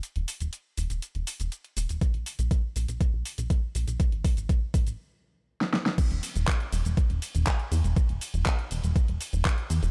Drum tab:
CC |----------------|----------------|----------------|x---------------|
RD |----------------|----------------|----------------|--x---x---x---x-|
HH |xxoxx-oxxxoxxxox|xxoxx-oxx-oxx-ox|xxoxx-ox--------|xxoxxxoxxxoxxxox|
SH |x-xxx-xxx-xxx-xx|x-xxx-xxx-xxx-xx|x-xxx-xx--------|x-xxx-xxx-xxx-xx|
CP |----------------|----------------|----------------|----x-------x---|
SD |----------------|----------------|-------------ooo|----------------|
BD |----------------|o---o---o---o---|o-o-o-o---------|o---o---o---o---|

CC |----------------|
RD |--x---x---x---x-|
HH |xxoxxxoxxxoxxxox|
SH |x-xxx-xxx-xxx-xx|
CP |----x-------x---|
SD |----------------|
BD |o---o---o---o---|